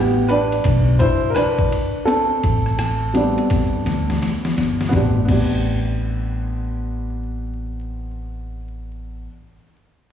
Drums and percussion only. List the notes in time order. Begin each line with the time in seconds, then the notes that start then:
0.29 ride
0.52 ride
0.64 kick, ride
1.00 kick, ride
1.36 cross-stick, hi-hat pedal, ride
1.59 kick
1.72 ride
2.08 ride
2.43 kick, ride
2.66 cross-stick
2.79 cross-stick, hi-hat pedal, ride
3.15 ride
3.38 ride
3.50 kick, snare, ride
3.86 snare, ride
4.10 snare
4.22 snare, hi-hat pedal, ride
4.45 snare
4.58 snare, ride
4.81 snare
4.93 kick, snare
5.29 kick, crash